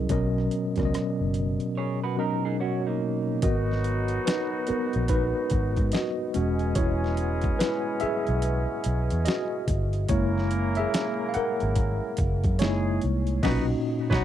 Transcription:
0.00 0.10 F#3 medium
0.00 0.10 C#4 medium
0.00 0.11 E4 medium
0.00 0.11 G#4 medium
0.00 0.11 A#4 medium
0.00 0.11 D#5 medium
0.09 0.48 B1 medium
0.09 0.62 B2 medium
0.09 0.63 F#3 medium
0.09 0.63 C#4 medium
0.09 0.63 A#4 medium
0.09 0.63 D#5 medium
0.09 kick medium
0.09 closed hi-hat medium
0.38 cross-stick soft
0.51 closed hi-hat medium
0.76 0.92 C#2 medium
0.76 1.93 B2 medium
0.76 1.94 F#3 medium
0.76 1.94 C#4 medium
0.76 1.94 A#4 medium
0.76 0.83 D5 medium
0.76 kick medium
0.76 cross-stick soft
0.76 closed hi-hat soft
0.85 1.98 D#5 medium
0.94 muted fingered electric bass stroke soft
0.94 cross-stick medium
0.94 closed hi-hat medium
1.21 1.57 F#1 medium
1.34 closed hi-hat medium
1.60 closed hi-hat soft
1.77 2.02 G#4 medium
1.77 2.01 C#5 medium
2.04 2.18 F#4 medium
2.04 2.18 B4 medium
2.17 3.23 B2 medium
2.17 3.23 F#3 medium
2.17 3.23 C#4 medium
2.17 2.43 D#4 medium
2.17 3.24 A#4 medium
2.17 2.43 A#4 medium
2.17 3.24 D#5 medium
2.45 2.60 D#4 medium
2.45 2.59 G#4 medium
2.60 2.85 C#4 medium
2.60 2.85 F#4 medium
2.60 3.40 F#4 medium
2.60 3.46 C#5 medium
2.87 3.41 A#3 medium
2.87 3.41 D#4 medium
3.42 4.18 G#1 loud
3.42 5.89 F#3 medium
3.42 5.89 B3 medium
3.42 4.64 B3 soft
3.42 5.89 D#4 medium
3.42 5.89 F#4 medium
3.42 4.23 F#4 medium
3.42 4.64 A#4 medium
3.42 4.29 D#5 medium
3.42 kick loud
3.42 closed hi-hat medium
3.71 snare soft
3.84 closed hi-hat medium
4.08 closed hi-hat soft
4.26 5.06 D#4 medium
4.26 5.06 B4 medium
4.26 snare loud
4.26 closed hi-hat medium
4.67 5.06 B3 soft
4.67 5.06 F#4 medium
4.67 5.06 A#4 medium
4.67 muted fingered electric bass stroke soft
4.67 closed hi-hat medium
4.93 5.32 A#1 medium
4.93 closed hi-hat soft
5.08 5.89 D#4 medium
5.08 5.95 B4 medium
5.08 kick medium
5.08 closed hi-hat medium
5.50 5.75 G#1 medium
5.50 kick medium
5.50 closed hi-hat medium
5.76 5.92 G#2 medium
5.76 kick medium
5.76 closed hi-hat soft
5.92 6.35 F#4 medium
5.92 6.79 D#5 medium
5.92 snare loud
5.92 closed hi-hat medium
6.34 6.73 E1 medium
6.34 9.64 G#3 medium
6.34 9.64 B3 medium
6.34 9.64 C#4 medium
6.34 9.26 F#4 medium
6.34 9.64 G#4 medium
6.34 closed hi-hat medium
6.59 closed hi-hat soft
6.75 7.51 E1 loud
6.75 7.56 E4 medium
6.75 7.62 C#5 medium
6.75 kick loud
6.75 closed hi-hat medium
7.04 snare soft
7.17 closed hi-hat medium
7.41 kick medium
7.41 closed hi-hat soft
7.59 7.99 E4 medium
7.59 8.02 B4 medium
7.59 snare loud
7.59 closed hi-hat medium
8.00 9.23 G#4 medium
8.00 9.30 E5 loud
8.00 muted fingered electric bass stroke soft
8.00 closed hi-hat medium
8.27 8.65 B1 medium
8.27 closed hi-hat soft
8.42 closed hi-hat medium
8.84 9.09 B1 medium
8.84 closed hi-hat medium
9.10 9.26 E2 medium
9.10 closed hi-hat soft
9.25 10.06 F#4 medium
9.25 10.05 D#5 loud
9.25 snare loud
9.25 closed hi-hat medium
9.68 10.06 G1 medium
9.68 kick medium
9.68 closed hi-hat medium
9.93 closed hi-hat soft
10.09 10.85 F#1 loud
10.09 11.31 G#3 medium
10.09 12.14 A#3 medium
10.09 11.31 A#3 soft
10.09 12.14 C#4 medium
10.09 12.14 E4 medium
10.09 10.74 E4 medium
10.09 12.14 A#4 medium
10.09 10.79 C#5 medium
10.09 kick loud
10.09 closed hi-hat medium
10.38 snare soft
10.51 closed hi-hat medium
10.75 11.26 E5 loud
10.75 closed hi-hat soft
10.79 11.27 G#4 medium
10.94 snare loud
10.94 closed hi-hat medium
11.29 11.34 F5 medium
11.34 12.15 A#4 medium
11.34 12.14 F#5 loud
11.34 muted fingered electric bass stroke soft
11.34 closed hi-hat medium
11.60 11.99 G#1 medium
11.60 closed hi-hat soft
11.75 kick medium
11.75 closed hi-hat medium
12.17 12.42 F#1 loud
12.17 kick medium
12.17 closed hi-hat medium
12.44 12.59 F#2 loud
12.44 kick medium
12.44 closed hi-hat soft
12.59 12.98 F#1 medium
12.59 13.01 G#3 medium
12.59 13.39 G#3 medium
12.59 13.39 A#3 medium
12.59 13.40 D#4 soft
12.59 13.01 E4 medium
12.59 13.40 E4 medium
12.59 13.01 G#4 medium
12.59 13.39 C#5 medium
12.59 snare loud
12.59 closed hi-hat medium
13.02 13.40 C2 medium
13.02 closed hi-hat medium
13.27 closed hi-hat soft
13.43 13.74 B1 loud
13.43 13.74 A#2 loud
13.43 13.66 B3 medium
13.43 13.74 C#4 medium
13.43 13.66 D#4 medium
13.43 13.74 D#4 medium
13.43 13.66 F#4 medium
13.43 13.74 F#4 medium
13.43 13.66 B4 medium
13.43 13.73 D#5 medium
13.43 kick loud
13.43 snare loud
13.43 crash medium
14.10 14.24 B1 loud
14.10 14.24 B3 medium
14.10 14.24 D#4 medium
14.10 14.24 F#4 medium
14.10 14.24 B4 medium
14.10 14.24 C#5 loud
14.10 kick loud
14.10 snare loud

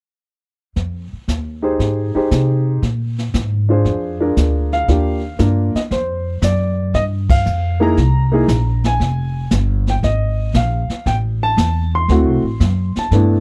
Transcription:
0.76 1.09 F2 medium
0.76 brush sweep soft
0.76 kick soft
0.76 snare soft
1.13 muted upright bass stroke soft
1.28 1.78 D#2 medium
1.28 kick soft
1.28 snare soft
1.28 hi-hat pedal medium
1.62 2.11 D#4 medium
1.62 2.11 G4 soft
1.62 2.11 G#4 soft
1.62 2.12 C5 medium
1.79 2.13 G#2 medium
1.79 brush sweep soft
1.79 kick soft
1.79 snare soft
2.15 2.79 D#4 medium
2.15 2.80 G4 medium
2.15 2.80 G#4 medium
2.15 2.80 C5 medium
2.15 muted upright bass stroke soft
2.31 2.81 C3 medium
2.31 kick soft
2.31 snare medium
2.31 hi-hat pedal soft
2.82 3.32 A#2 medium
2.82 brush sweep soft
2.82 kick soft
2.82 snare soft
3.18 snare soft
3.34 3.84 G#2 medium
3.34 kick soft
3.34 snare soft
3.34 hi-hat pedal soft
3.69 4.17 D4 medium
3.69 4.18 F4 soft
3.69 4.18 G#4 soft
3.69 4.18 C5 medium
3.85 4.35 F2 medium
3.85 brush sweep soft
3.85 kick soft
3.85 snare soft
4.20 4.85 D4 medium
4.20 4.85 F4 soft
4.20 4.85 G#4 soft
4.20 4.86 A#4 medium
4.36 4.87 D2 medium
4.36 kick soft
4.36 snare soft
4.36 hi-hat pedal medium
4.72 5.36 F5 medium
4.72 snare soft
4.88 5.38 D#2 medium
4.88 5.21 A#3 soft
4.88 5.21 D4 soft
4.88 5.21 F4 soft
4.88 5.21 G4 soft
4.88 brush sweep medium
4.88 kick soft
4.88 snare soft
5.39 5.73 G2 medium
5.39 5.71 A#3 medium
5.39 5.72 D4 medium
5.39 5.72 F4 medium
5.39 5.72 A#4 medium
5.39 kick soft
5.39 snare medium
5.39 hi-hat pedal medium
5.75 5.81 D#5 medium
5.75 muted upright bass stroke soft
5.75 snare soft
5.91 6.41 F2 medium
5.91 6.45 C5 medium
5.91 brush sweep soft
5.91 kick soft
5.91 snare soft
6.42 6.92 F#2 medium
6.42 6.91 D5 medium
6.42 kick soft
6.42 snare medium
6.42 hi-hat pedal medium
6.94 7.44 G2 medium
6.94 7.03 D#5 medium
6.94 brush sweep soft
6.94 kick soft
6.94 snare soft
7.29 7.83 F5 medium
7.29 kick medium
7.29 ride medium
7.46 7.96 F2 medium
7.46 hi-hat pedal medium
7.80 7.95 A#3 medium
7.80 7.95 D#4 medium
7.80 7.96 E4 medium
7.80 7.96 G#4 medium
7.80 8.88 A#5 medium
7.97 8.47 C2 medium
7.97 brush sweep soft
7.97 kick soft
7.97 snare soft
8.32 8.47 A#3 medium
8.32 8.47 D#4 medium
8.32 8.47 E4 medium
8.32 8.48 G#4 medium
8.48 8.98 A#1 medium
8.48 kick soft
8.48 snare medium
8.48 hi-hat pedal medium
8.84 9.49 G#5 medium
8.84 snare soft
9.00 9.50 F1 medium
9.00 brush sweep soft
9.00 kick soft
9.00 snare soft
9.51 10.01 G1 medium
9.51 kick soft
9.51 snare medium
9.51 hi-hat pedal medium
9.87 9.95 G5 medium
9.87 snare soft
10.03 10.53 G#1 medium
10.03 10.57 D#5 medium
10.03 brush sweep soft
10.03 kick soft
10.03 snare soft
10.54 10.87 A#1 medium
10.54 11.08 F5 medium
10.54 kick soft
10.54 snare medium
10.54 hi-hat pedal soft
10.89 muted upright bass stroke soft
10.89 snare soft
11.06 11.56 A1 medium
11.06 11.15 G5 medium
11.06 brush sweep soft
11.06 kick soft
11.06 snare soft
11.43 11.90 A5 loud
11.57 12.07 E2 medium
11.57 kick soft
11.57 snare medium
11.57 hi-hat pedal medium
11.95 12.93 C6 medium
12.09 12.26 D2 medium
12.09 12.41 A3 medium
12.09 12.42 C4 medium
12.09 12.42 E4 soft
12.09 12.42 F#4 medium
12.09 brush sweep soft
12.09 kick soft
12.09 snare soft
12.26 12.42 C2 soft
12.43 12.59 A1 medium
12.60 12.93 F#2 medium
12.60 kick soft
12.60 snare medium
12.60 hi-hat pedal soft
12.96 13.40 A5 medium
12.96 muted upright bass stroke soft
12.96 snare soft
13.11 13.40 G2 medium
13.11 13.40 A3 medium
13.11 13.40 B3 soft
13.11 13.40 D4 soft
13.11 13.40 E4 medium
13.11 brush sweep soft
13.11 kick soft
13.11 snare soft

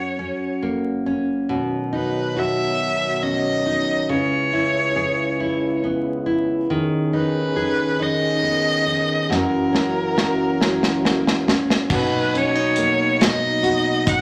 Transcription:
0.00 1.49 F#2 medium
0.00 0.18 C#4 soft
0.00 2.36 F#4 medium
0.00 0.63 C#5 medium
0.19 1.06 C#4 soft
0.63 1.58 A#3 soft
1.06 1.92 C#4 soft
1.49 4.09 B2 medium
1.49 4.08 B2 medium
1.49 4.07 D#3 medium
1.49 4.07 F#3 medium
1.49 4.07 C#5 medium
1.93 2.79 D#4 soft
1.93 2.40 B4 medium
2.36 4.18 F#4 medium
2.36 3.24 E5 medium
3.22 5.83 C#4 soft
3.22 4.11 D#5 medium
3.66 4.18 D#4 soft
4.09 6.67 C#2 medium
4.09 6.69 C#3 medium
4.09 6.67 C#3 medium
4.09 6.68 E4 soft
4.09 6.68 B4 medium
4.09 5.83 C#5 medium
4.53 5.39 E4 soft
4.96 7.56 G#4 medium
5.40 6.25 E4 soft
5.84 8.42 B3 soft
6.26 6.78 E4 soft
6.70 9.28 D#2 medium
6.70 9.30 D#3 medium
6.70 9.28 D#3 medium
6.70 9.28 C#4 medium
6.70 9.28 G#4 medium
7.13 7.98 D#4 soft
7.13 8.04 B4 medium
7.56 9.38 G#4 medium
7.99 8.85 D#4 soft
7.99 9.36 D#5 medium
8.43 9.38 B3 soft
8.86 9.38 D#4 soft
9.30 11.90 F#2 medium
9.30 11.72 F#2 medium
9.30 11.72 E3 medium
9.30 11.72 A#3 soft
9.30 11.72 F#4 medium
9.30 snare soft
9.34 11.49 A#4 medium
9.73 10.59 C#4 soft
9.73 snare soft
10.17 13.63 F#4 medium
10.17 snare medium
10.61 11.47 C#4 soft
10.61 snare medium
10.83 snare medium
11.04 12.77 A#3 soft
11.04 snare medium
11.27 snare medium
11.48 11.99 C#4 soft
11.48 snare medium
11.70 snare medium
11.89 14.21 B2 medium
11.89 14.21 F#3 medium
11.89 14.21 D#4 medium
11.89 kick medium
11.89 crash medium
11.94 12.39 B4 medium
12.34 12.55 C#4 soft
12.34 13.24 C#5 medium
12.34 closed hi-hat soft
12.55 13.18 D#4 soft
12.76 14.21 A#3 medium
12.76 closed hi-hat medium
13.20 14.05 D#4 medium
13.20 14.10 D#5 medium
13.20 snare medium
13.20 closed hi-hat medium
13.63 14.21 F#4 medium
13.63 closed hi-hat soft
14.06 14.21 D#4 medium
14.06 14.21 F#5 medium
14.06 kick medium
14.06 closed hi-hat medium

